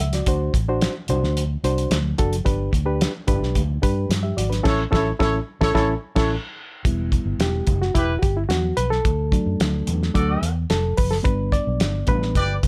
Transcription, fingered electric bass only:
0, 0, Header, 1, 2, 480
1, 0, Start_track
1, 0, Key_signature, 2, "major"
1, 0, Tempo, 549451
1, 236, Time_signature, 4, 2, 24, 8
1, 11074, End_track
2, 0, Start_track
2, 0, Title_t, "Fingered electric bass"
2, 0, Program_c, 0, 33
2, 0, Note_on_c, 0, 37, 73
2, 182, Note_off_c, 0, 37, 0
2, 233, Note_on_c, 0, 38, 109
2, 422, Note_off_c, 0, 38, 0
2, 469, Note_on_c, 0, 33, 72
2, 753, Note_off_c, 0, 33, 0
2, 952, Note_on_c, 0, 36, 91
2, 1047, Note_off_c, 0, 36, 0
2, 1074, Note_on_c, 0, 38, 93
2, 1355, Note_off_c, 0, 38, 0
2, 1429, Note_on_c, 0, 36, 89
2, 1618, Note_off_c, 0, 36, 0
2, 1665, Note_on_c, 0, 38, 94
2, 1856, Note_off_c, 0, 38, 0
2, 1912, Note_on_c, 0, 30, 84
2, 2099, Note_off_c, 0, 30, 0
2, 2148, Note_on_c, 0, 31, 117
2, 2337, Note_off_c, 0, 31, 0
2, 2383, Note_on_c, 0, 38, 77
2, 2667, Note_off_c, 0, 38, 0
2, 2866, Note_on_c, 0, 31, 100
2, 2961, Note_off_c, 0, 31, 0
2, 2978, Note_on_c, 0, 35, 87
2, 3076, Note_off_c, 0, 35, 0
2, 3104, Note_on_c, 0, 38, 100
2, 3293, Note_off_c, 0, 38, 0
2, 3347, Note_on_c, 0, 43, 106
2, 3535, Note_off_c, 0, 43, 0
2, 3576, Note_on_c, 0, 43, 105
2, 3769, Note_off_c, 0, 43, 0
2, 3819, Note_on_c, 0, 32, 81
2, 4010, Note_off_c, 0, 32, 0
2, 4064, Note_on_c, 0, 33, 99
2, 4228, Note_off_c, 0, 33, 0
2, 4298, Note_on_c, 0, 33, 101
2, 4464, Note_off_c, 0, 33, 0
2, 4542, Note_on_c, 0, 33, 94
2, 4706, Note_off_c, 0, 33, 0
2, 4900, Note_on_c, 0, 33, 106
2, 5004, Note_off_c, 0, 33, 0
2, 5024, Note_on_c, 0, 33, 106
2, 5187, Note_off_c, 0, 33, 0
2, 5385, Note_on_c, 0, 33, 107
2, 5548, Note_off_c, 0, 33, 0
2, 5985, Note_on_c, 0, 28, 91
2, 6268, Note_off_c, 0, 28, 0
2, 6337, Note_on_c, 0, 31, 93
2, 6434, Note_off_c, 0, 31, 0
2, 6453, Note_on_c, 0, 28, 79
2, 6646, Note_off_c, 0, 28, 0
2, 6699, Note_on_c, 0, 30, 101
2, 6890, Note_off_c, 0, 30, 0
2, 6945, Note_on_c, 0, 28, 87
2, 7134, Note_off_c, 0, 28, 0
2, 7183, Note_on_c, 0, 31, 92
2, 7373, Note_off_c, 0, 31, 0
2, 7414, Note_on_c, 0, 40, 93
2, 7608, Note_off_c, 0, 40, 0
2, 7663, Note_on_c, 0, 35, 88
2, 7854, Note_off_c, 0, 35, 0
2, 7904, Note_on_c, 0, 38, 100
2, 8189, Note_off_c, 0, 38, 0
2, 8266, Note_on_c, 0, 42, 92
2, 8361, Note_off_c, 0, 42, 0
2, 8386, Note_on_c, 0, 38, 76
2, 8576, Note_off_c, 0, 38, 0
2, 8626, Note_on_c, 0, 40, 90
2, 8816, Note_off_c, 0, 40, 0
2, 8868, Note_on_c, 0, 38, 95
2, 9058, Note_off_c, 0, 38, 0
2, 9103, Note_on_c, 0, 40, 88
2, 9295, Note_off_c, 0, 40, 0
2, 9346, Note_on_c, 0, 29, 101
2, 9537, Note_off_c, 0, 29, 0
2, 9593, Note_on_c, 0, 30, 73
2, 9782, Note_off_c, 0, 30, 0
2, 9825, Note_on_c, 0, 31, 92
2, 10111, Note_off_c, 0, 31, 0
2, 10195, Note_on_c, 0, 35, 92
2, 10289, Note_off_c, 0, 35, 0
2, 10308, Note_on_c, 0, 31, 88
2, 10499, Note_off_c, 0, 31, 0
2, 10552, Note_on_c, 0, 33, 94
2, 10793, Note_on_c, 0, 31, 96
2, 10806, Note_off_c, 0, 33, 0
2, 10983, Note_off_c, 0, 31, 0
2, 11034, Note_on_c, 0, 35, 89
2, 11074, Note_off_c, 0, 35, 0
2, 11074, End_track
0, 0, End_of_file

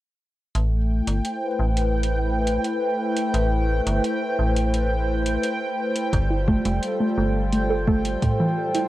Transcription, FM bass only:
0, 0, Header, 1, 2, 480
1, 0, Start_track
1, 0, Key_signature, 0, "minor"
1, 0, Tempo, 697674
1, 378, Time_signature, 4, 2, 24, 8
1, 6111, End_track
2, 0, Start_track
2, 0, Title_t, "FM bass"
2, 0, Program_c, 0, 39
2, 379, Note_on_c, 0, 33, 96
2, 696, Note_off_c, 0, 33, 0
2, 739, Note_on_c, 0, 31, 85
2, 832, Note_off_c, 0, 31, 0
2, 1099, Note_on_c, 0, 33, 86
2, 1776, Note_off_c, 0, 33, 0
2, 2298, Note_on_c, 0, 33, 90
2, 2616, Note_off_c, 0, 33, 0
2, 2658, Note_on_c, 0, 31, 93
2, 2752, Note_off_c, 0, 31, 0
2, 3018, Note_on_c, 0, 33, 83
2, 3696, Note_off_c, 0, 33, 0
2, 4218, Note_on_c, 0, 31, 101
2, 4536, Note_off_c, 0, 31, 0
2, 4579, Note_on_c, 0, 29, 86
2, 4672, Note_off_c, 0, 29, 0
2, 4939, Note_on_c, 0, 31, 88
2, 5616, Note_off_c, 0, 31, 0
2, 6111, End_track
0, 0, End_of_file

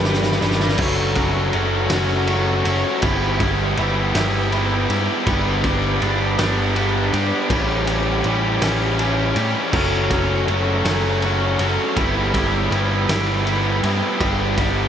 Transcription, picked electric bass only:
0, 0, Header, 1, 2, 480
1, 0, Start_track
1, 0, Tempo, 745342
1, 513, Time_signature, 6, 3, 24, 8
1, 9583, End_track
2, 0, Start_track
2, 0, Title_t, "Picked electric bass"
2, 0, Program_c, 0, 34
2, 0, Note_on_c, 0, 31, 103
2, 247, Note_off_c, 0, 31, 0
2, 274, Note_on_c, 0, 31, 99
2, 490, Note_off_c, 0, 31, 0
2, 507, Note_on_c, 0, 30, 97
2, 965, Note_off_c, 0, 30, 0
2, 991, Note_on_c, 0, 30, 94
2, 1209, Note_off_c, 0, 30, 0
2, 1230, Note_on_c, 0, 30, 95
2, 1687, Note_off_c, 0, 30, 0
2, 1709, Note_on_c, 0, 30, 95
2, 1820, Note_off_c, 0, 30, 0
2, 1948, Note_on_c, 0, 31, 100
2, 2406, Note_off_c, 0, 31, 0
2, 2431, Note_on_c, 0, 31, 104
2, 2649, Note_off_c, 0, 31, 0
2, 2669, Note_on_c, 0, 31, 98
2, 3126, Note_off_c, 0, 31, 0
2, 3154, Note_on_c, 0, 43, 97
2, 3262, Note_off_c, 0, 43, 0
2, 3393, Note_on_c, 0, 31, 109
2, 3848, Note_off_c, 0, 31, 0
2, 3875, Note_on_c, 0, 31, 97
2, 4091, Note_off_c, 0, 31, 0
2, 4116, Note_on_c, 0, 31, 97
2, 4569, Note_off_c, 0, 31, 0
2, 4594, Note_on_c, 0, 43, 92
2, 4702, Note_off_c, 0, 43, 0
2, 4830, Note_on_c, 0, 33, 98
2, 5285, Note_off_c, 0, 33, 0
2, 5311, Note_on_c, 0, 33, 97
2, 5528, Note_off_c, 0, 33, 0
2, 5553, Note_on_c, 0, 33, 90
2, 6006, Note_off_c, 0, 33, 0
2, 6028, Note_on_c, 0, 45, 91
2, 6138, Note_off_c, 0, 45, 0
2, 6268, Note_on_c, 0, 30, 99
2, 6724, Note_off_c, 0, 30, 0
2, 6747, Note_on_c, 0, 30, 93
2, 6965, Note_off_c, 0, 30, 0
2, 6986, Note_on_c, 0, 30, 94
2, 7442, Note_off_c, 0, 30, 0
2, 7466, Note_on_c, 0, 30, 98
2, 7576, Note_off_c, 0, 30, 0
2, 7708, Note_on_c, 0, 31, 104
2, 8163, Note_off_c, 0, 31, 0
2, 8185, Note_on_c, 0, 31, 98
2, 8403, Note_off_c, 0, 31, 0
2, 8431, Note_on_c, 0, 31, 99
2, 8884, Note_off_c, 0, 31, 0
2, 8909, Note_on_c, 0, 43, 94
2, 9017, Note_off_c, 0, 43, 0
2, 9150, Note_on_c, 0, 31, 108
2, 9583, Note_off_c, 0, 31, 0
2, 9583, End_track
0, 0, End_of_file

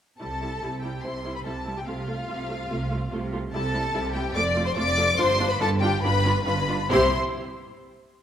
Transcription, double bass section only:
0, 0, Header, 1, 2, 480
1, 0, Start_track
1, 0, Key_signature, 0, "major"
1, 0, Tempo, 415225
1, 237, Time_signature, 4, 2, 24, 8
1, 5994, Tempo, 433526
1, 9363, End_track
2, 0, Start_track
2, 0, Title_t, "Double bass section"
2, 0, Program_c, 0, 48
2, 237, Note_on_c, 0, 36, 47
2, 664, Note_off_c, 0, 36, 0
2, 725, Note_on_c, 0, 36, 46
2, 1148, Note_off_c, 0, 36, 0
2, 1196, Note_on_c, 0, 36, 49
2, 1623, Note_off_c, 0, 36, 0
2, 1685, Note_on_c, 0, 36, 47
2, 2105, Note_off_c, 0, 36, 0
2, 2164, Note_on_c, 0, 36, 55
2, 2582, Note_off_c, 0, 36, 0
2, 2646, Note_on_c, 0, 36, 51
2, 3064, Note_off_c, 0, 36, 0
2, 3118, Note_on_c, 0, 36, 58
2, 3540, Note_off_c, 0, 36, 0
2, 3599, Note_on_c, 0, 36, 62
2, 4020, Note_off_c, 0, 36, 0
2, 4080, Note_on_c, 0, 36, 66
2, 4500, Note_off_c, 0, 36, 0
2, 4557, Note_on_c, 0, 36, 76
2, 4974, Note_off_c, 0, 36, 0
2, 5028, Note_on_c, 0, 29, 79
2, 5451, Note_off_c, 0, 29, 0
2, 5508, Note_on_c, 0, 29, 85
2, 5935, Note_off_c, 0, 29, 0
2, 5995, Note_on_c, 0, 31, 93
2, 6406, Note_off_c, 0, 31, 0
2, 6458, Note_on_c, 0, 31, 93
2, 6872, Note_off_c, 0, 31, 0
2, 6931, Note_on_c, 0, 31, 90
2, 7353, Note_off_c, 0, 31, 0
2, 7406, Note_on_c, 0, 31, 83
2, 7842, Note_off_c, 0, 31, 0
2, 7906, Note_on_c, 0, 36, 91
2, 8173, Note_off_c, 0, 36, 0
2, 9363, End_track
0, 0, End_of_file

